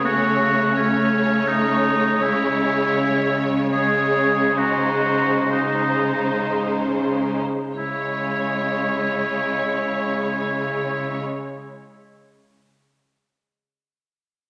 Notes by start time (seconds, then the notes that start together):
Already playing: C#3
0.05 A3 C#4 F#4 C#5
0.76 A3 C#4 C#5
1.48 D#4
2.20 C#3 G#3 C#4 E4 C#5
3.72 G#3 C#4 G#4 C#5
4.57 G#3 D#4 F#4 C5
5.51 G#3 D#4 C5
7.76 C#3 G#3 C#4 E4 C#5